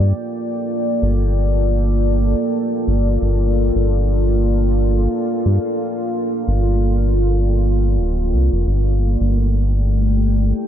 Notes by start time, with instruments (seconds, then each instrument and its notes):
Already playing: ambient pad A#3 F4 A4 D5 G5
0.00 analog synth bass G2
1.02 analog synth bass G1
2.87 analog synth bass G1
3.22 analog synth bass G1
3.75 analog synth bass G1
5.46 analog synth bass G2
6.48 analog synth bass G1
7.99 analog synth bass D1
8.33 analog synth bass C2
8.52 analog synth bass F1
8.67 analog synth bass G1, ambient pad A3
9.08 ambient pad G4
9.17 analog synth bass G1, ambient pad G5
9.27 ambient pad E4